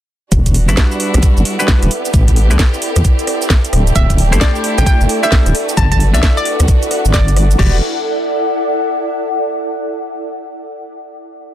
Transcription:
0.32 0.70 E1 loud
0.32 1.89 G3 medium
0.32 3.69 B3 medium
0.32 1.89 D4 medium
0.32 7.58 E4 medium
0.32 1.89 F#4 medium
0.32 kick loud
0.32 closed hi-hat medium
0.32 shaker soft
0.46 kick medium
0.46 closed hi-hat medium
0.46 shaker soft
0.54 7.59 A4 medium
0.54 open hi-hat loud
0.68 0.75 G1 medium
0.68 1.56 G3 medium
0.68 1.56 D4 medium
0.68 1.56 E4 medium
0.68 1.56 F#4 medium
0.68 1.56 B4 medium
0.68 closed hi-hat medium
0.68 shaker medium
0.77 kick loud
0.77 snare loud
0.77 shaker medium
0.90 7.59 D5 medium
0.90 shaker soft
1.00 open hi-hat loud
1.14 1.21 B1 medium
1.14 cross-stick medium
1.14 closed hi-hat medium
1.14 shaker medium
1.23 kick loud
1.23 closed hi-hat medium
1.23 shaker medium
1.37 1.43 G1 loud
1.37 shaker soft
1.45 open hi-hat loud
1.59 1.90 G3 medium
1.59 1.90 D4 medium
1.59 1.90 E4 medium
1.59 1.90 F#4 medium
1.59 1.90 B4 medium
1.59 shaker medium
1.68 kick loud
1.68 snare loud
1.68 shaker soft
1.82 1.89 E1 medium
1.82 cross-stick soft
1.82 closed hi-hat medium
1.82 shaker soft
1.91 5.51 C4 medium
1.91 3.71 E4 medium
1.91 3.71 G4 medium
1.91 open hi-hat loud
2.05 closed hi-hat soft
2.05 shaker medium
2.14 2.52 A1 loud
2.14 kick loud
2.14 closed hi-hat medium
2.14 shaker soft
2.28 kick medium
2.28 closed hi-hat medium
2.28 shaker soft
2.36 open hi-hat loud
2.50 2.57 C2 medium
2.50 2.56 A3 medium
2.50 2.56 C4 medium
2.50 2.56 E4 medium
2.50 2.56 G4 medium
2.50 2.56 B4 medium
2.50 closed hi-hat medium
2.50 shaker medium
2.59 5.55 G5 medium
2.59 kick loud
2.59 snare loud
2.59 shaker medium
2.74 shaker soft
2.82 open hi-hat loud
2.96 3.02 E2 medium
2.96 cross-stick medium
2.96 closed hi-hat medium
2.96 shaker medium
3.05 kick loud
3.05 closed hi-hat medium
3.05 shaker medium
3.19 closed hi-hat soft
3.19 shaker soft
3.27 cross-stick soft
3.27 open hi-hat loud
3.42 shaker medium
3.50 kick loud
3.50 snare loud
3.50 shaker soft
3.65 closed hi-hat medium
3.65 shaker soft
3.73 3.91 D1 loud
3.73 7.55 A3 medium
3.73 5.53 E4 medium
3.73 5.53 G4 medium
3.73 cross-stick medium
3.73 open hi-hat loud
3.87 closed hi-hat soft
3.87 shaker medium
3.96 4.34 D1 loud
3.96 4.09 E5 medium
3.96 kick loud
3.96 closed hi-hat medium
3.96 shaker medium
4.10 kick medium
4.10 closed hi-hat medium
4.10 shaker soft
4.18 open hi-hat loud
4.32 4.39 G1 medium
4.32 5.20 A3 medium
4.32 5.20 D4 medium
4.32 5.20 E4 medium
4.32 5.20 G4 medium
4.32 5.20 C5 medium
4.32 closed hi-hat medium
4.32 shaker medium
4.41 4.54 D5 loud
4.41 kick loud
4.41 snare loud
4.41 shaker medium
4.56 shaker soft
4.64 open hi-hat loud
4.78 4.84 A1 medium
4.78 4.83 G5 medium
4.78 cross-stick medium
4.78 closed hi-hat medium
4.78 shaker medium
4.86 4.96 G5 medium
4.86 kick loud
4.86 closed hi-hat medium
4.86 shaker medium
5.01 5.07 G1 medium
5.01 shaker soft
5.09 open hi-hat loud
5.23 5.54 A3 medium
5.23 5.54 D4 medium
5.23 5.54 E4 medium
5.23 5.54 G4 medium
5.23 5.54 C5 medium
5.23 5.31 E5 medium
5.23 shaker medium
5.32 kick loud
5.32 snare loud
5.32 shaker medium
5.46 5.53 D1 medium
5.46 cross-stick soft
5.46 closed hi-hat medium
5.46 shaker soft
5.55 7.57 B3 medium
5.55 7.57 D4 medium
5.55 7.57 F#4 medium
5.55 open hi-hat loud
5.69 closed hi-hat soft
5.69 shaker medium
5.77 6.16 G1 loud
5.77 5.86 A5 medium
5.77 kick loud
5.77 closed hi-hat medium
5.77 shaker soft
5.92 7.59 F#5 medium
5.92 5.97 A5 medium
5.92 kick medium
5.92 closed hi-hat medium
5.92 shaker soft
6.00 open hi-hat loud
6.14 6.21 B1 medium
6.14 6.19 B3 medium
6.14 6.20 D4 medium
6.14 6.20 F#4 medium
6.14 6.20 G4 medium
6.14 6.20 D5 medium
6.14 6.20 E5 medium
6.14 closed hi-hat medium
6.14 shaker medium
6.23 6.32 E5 medium
6.23 kick loud
6.23 snare loud
6.23 shaker medium
6.37 6.45 D5 medium
6.37 shaker soft
6.45 open hi-hat loud
6.60 6.66 D2 medium
6.60 cross-stick medium
6.60 closed hi-hat medium
6.60 shaker medium
6.68 kick loud
6.68 closed hi-hat medium
6.68 shaker medium
6.83 closed hi-hat soft
6.83 shaker soft
6.91 cross-stick soft
6.91 open hi-hat loud
7.05 7.56 G1 medium
7.05 shaker medium
7.14 7.59 D5 loud
7.14 kick loud
7.14 snare loud
7.14 shaker medium
7.28 closed hi-hat medium
7.28 shaker soft
7.36 cross-stick medium
7.36 open hi-hat loud
7.51 closed hi-hat soft
7.51 shaker medium
7.59 7.80 E1 loud
7.59 7.80 G3 medium
7.59 7.80 B3 medium
7.59 7.77 B3 medium
7.59 7.80 D4 medium
7.59 9.37 E4 medium
7.59 7.77 E4 medium
7.59 7.77 F#4 medium
7.59 7.80 F#4 medium
7.59 7.77 G4 medium
7.59 7.77 D5 loud
7.59 kick loud
7.59 crash medium
7.68 9.37 A4 medium
7.75 9.37 D5 medium
7.80 9.37 F#5 medium

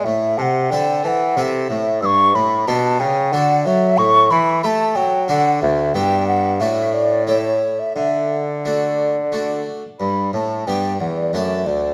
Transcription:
0.04 0.37 A2 medium
0.04 0.35 A2 medium
0.04 0.39 E5 loud
0.38 0.73 C3 medium
0.38 0.68 C3 medium
0.38 0.43 A5 medium
0.42 0.72 F#5 loud
0.71 1.04 D3 medium
0.71 1.01 D3 medium
0.71 1.18 C4 medium
0.71 1.19 E4 medium
0.71 1.19 A4 medium
0.71 1.06 G5 medium
1.04 1.38 E3 medium
1.04 1.33 E3 medium
1.04 1.40 F#5 loud
1.04 1.09 A5 medium
1.37 1.69 C3 medium
1.37 1.66 C3 medium
1.37 1.84 C4 soft
1.37 1.84 E4 medium
1.37 1.84 A4 medium
1.69 2.03 A2 medium
1.69 1.99 A2 medium
1.69 2.01 E5 medium
2.02 2.36 G2 medium
2.02 2.32 G2 medium
2.02 2.37 C#6 loud
2.02 2.07 E6 loud
2.34 2.67 A2 medium
2.34 2.64 A2 medium
2.34 2.69 B5 loud
2.67 2.99 B2 medium
2.67 2.97 B2 medium
2.67 3.14 D4 medium
2.67 3.15 G4 medium
2.67 3.15 B4 medium
2.67 3.01 A5 loud
3.00 3.34 C#3 medium
3.00 3.29 C#3 medium
3.00 3.34 G5 loud
3.32 3.67 D3 medium
3.32 3.62 D3 medium
3.32 3.94 D4 medium
3.32 3.95 F#4 medium
3.32 3.95 A4 medium
3.32 3.64 F#5 loud
3.65 3.95 F#3 medium
3.65 3.98 F#3 medium
3.65 3.99 E5 loud
3.98 4.27 A2 medium
3.98 4.30 A2 medium
3.98 4.32 C#6 loud
4.31 4.60 E3 medium
4.31 4.63 E3 medium
4.31 4.62 B5 loud
4.63 4.93 A3 medium
4.63 4.98 A3 medium
4.63 5.10 E4 medium
4.63 5.11 G4 medium
4.63 5.11 A4 medium
4.63 4.97 A5 loud
4.63 4.67 B5 loud
4.95 5.25 F#3 medium
4.95 5.29 F#3 medium
4.95 5.28 G5 loud
5.28 5.58 D3 medium
5.28 5.61 D3 medium
5.28 5.90 D4 medium
5.28 5.90 F#4 medium
5.28 5.90 A4 medium
5.28 5.61 F#5 loud
5.62 5.91 D2 medium
5.62 5.94 D2 medium
5.62 5.96 E5 loud
5.94 6.56 G2 medium
5.94 6.62 G2 medium
5.94 6.56 B3 medium
5.94 6.57 E4 medium
5.94 6.57 G4 medium
5.94 6.27 G5 loud
6.28 6.62 F#5 loud
6.60 7.91 A2 medium
6.60 7.79 A2 medium
6.60 7.23 A3 medium
6.60 7.23 D4 medium
6.60 7.24 F#4 medium
6.60 6.95 E5 medium
6.94 7.26 D5 medium
7.26 7.91 A3 soft
7.26 7.92 E4 soft
7.26 7.92 G4 soft
7.26 7.81 C#5 medium
7.79 7.96 E5 medium
7.96 9.64 D3 medium
7.96 9.63 D3 medium
7.96 8.40 E5 loud
8.64 9.13 A3 soft
8.64 9.14 D4 soft
8.64 9.14 F#4 medium
8.64 9.62 D5 medium
9.32 9.81 A3 soft
9.32 9.81 D4 soft
9.32 9.81 F#4 soft
10.00 10.31 G2 medium
10.00 10.30 G2 soft
10.00 10.31 B5 medium
10.33 10.66 A2 medium
10.33 10.63 A2 soft
10.33 10.69 A5 medium
10.67 10.99 G2 medium
10.67 10.97 G2 soft
10.67 10.91 B3 soft
10.67 10.91 D4 soft
10.67 11.16 G4 soft
10.67 11.00 G5 medium
11.00 11.33 E2 medium
11.00 11.30 E2 soft
11.00 11.06 F#5 medium
11.16 11.35 D5 medium
11.33 11.68 F#2 medium
11.33 11.63 F#2 soft
11.33 11.94 A3 soft
11.33 11.94 D4 soft
11.33 11.94 A4 soft
11.33 11.68 E5 medium
11.66 11.94 D2 soft
11.66 11.94 D2 medium
11.66 11.94 D5 medium

